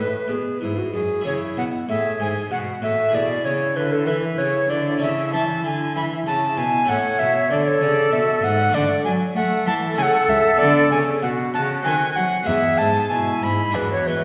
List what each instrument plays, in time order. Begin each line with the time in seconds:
Already playing: harpsichord A2 G#4 B4, cello A2, flute B4
0.28 cello B2, harpsichord B2, recorder G#4
0.61 cello G#2, harpsichord G#2, recorder E4
0.78 recorder F#4
0.94 cello F#2, harpsichord F#2, recorder G#4
1.21 harpsichord E4 G#4 C#5
1.26 harpsichord C#3, cello C#3, flute E4, recorder C#5
1.57 cello B2, harpsichord B2, recorder F#5
1.88 cello A2, harpsichord A2, flute G#4, recorder E5
2.20 cello G#2, harpsichord G#2, recorder G#5
2.51 harpsichord B2, cello B2, flute F#4, recorder F#5
2.82 harpsichord A2, cello A2, recorder E5
3.09 harpsichord E4 G#4
3.13 harpsichord B2, cello B2, flute E4, recorder D5
3.45 harpsichord C#3, cello C#3, recorder C#5
3.76 harpsichord D3, cello D3, recorder B4
3.92 recorder A4
4.07 harpsichord E3, cello E3, recorder B4
4.38 cello C#3, harpsichord C#3, recorder C#5
4.70 harpsichord D3, cello D3, recorder D5
4.97 harpsichord C#4 E4 A4
5.02 cello C#3, harpsichord C#3, recorder E5
5.33 harpsichord E3, cello E3, recorder A5
5.64 harpsichord D3, cello D3, recorder G#5
5.96 cello E3, harpsichord E3, recorder B5
6.26 cello C#3, harpsichord C#3, recorder A5
6.57 harpsichord B2, cello B2, recorder G#5
6.84 harpsichord C#4 E4 A4
6.88 harpsichord A2, cello A2, flute C#5, recorder F#5
7.19 harpsichord B2, cello B2, recorder E5
7.50 cello D3, harpsichord D3, flute A4, recorder D5
7.68 recorder C#5
7.81 harpsichord C#3, cello C#3, recorder D5
8.12 harpsichord B2, cello B2, recorder E5
8.42 harpsichord G#2, cello G#2, recorder F#5
8.69 harpsichord A3 F#4 A4
8.74 harpsichord D3, cello D3, recorder D5
9.05 cello F#3, harpsichord F#3, recorder G#5
9.35 harpsichord A3, cello A3, flute A4, recorder F#5
9.66 cello E3, harpsichord E3, recorder A5
9.94 harpsichord A3 E4 A4
9.98 cello C#3, harpsichord C#3, recorder G#5
10.02 recorder F#5
10.29 harpsichord C#2, cello C#2, recorder E5
10.56 harpsichord D3 B3 B4, recorder D5
10.60 cello D3
10.91 harpsichord C#3, cello C#3, recorder G#5
11.22 harpsichord B2, cello B2, flute F#4, recorder F#5
11.54 harpsichord C#3, cello C#3, recorder A5
11.82 harpsichord D#3 C4 A4, cello D#3, recorder G#5
12.16 harpsichord F#3, cello F#3, recorder F#5
12.43 harpsichord G#3 B3 E4, recorder E5
12.48 harpsichord E2, cello E2, flute G#4
12.78 harpsichord G#2, cello G#2, recorder A5
13.10 harpsichord B2, cello B2, flute E4, recorder G#5
13.43 harpsichord G#2, cello G#2, recorder B5
13.70 harpsichord G#3 D4 E4
13.75 harpsichord E2, cello E2, flute F#4, recorder B4
13.92 recorder C#5
14.07 harpsichord E3, cello E3, recorder B4